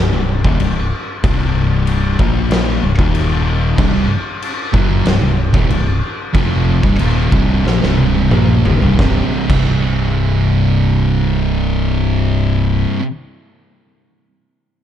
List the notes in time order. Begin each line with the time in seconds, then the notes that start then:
Already playing: C1 C2 G2
0.13 C1 C2 G2
0.44 D#1 D#2 A#2, kick
0.60 C1 C2 G2, crash
1.24 C1 C2 G2 C3, kick, crash
1.87 crash
2.19 A#1 A#2 F3 A#3, kick
2.51 snare, crash
2.83 C1 C2 G2
2.99 D#1 D#2 A#2 D#3, kick
3.15 crash
3.78 C1 C2 G2, kick, crash
3.95 C1 C2 G2
4.10 muted fingered electric bass stroke, muted distorted electric guitar stroke
4.42 crash
4.74 F#1 F#2 C#3 F#3, kick
5.06 C1 C2 G2, snare, crash
5.21 C1 C2 G2
5.54 D#1 D#2 A#2, kick
5.69 C1 C2 G2, crash
6.34 F1 F2 C3 F3, kick, crash
6.83 C1 C2 G2, kick
6.99 D#1 D#2 A#2 D#3, crash
7.32 C1 C2 G2 C3, kick
7.65 A#1 A#2 F3, snare
7.82 C1 C2 G2 C3, snare
7.98 high tom
8.15 high tom
8.31 A#1 A#2 F3 A#3, mid tom
8.48 mid tom
8.65 D#1 D#2 A#2, floor tom
8.82 C1 C2 G2, floor tom
8.98 C1 C2 G2, kick, snare
9.03 C3
9.49 C1 C2 G2 C3, kick, crash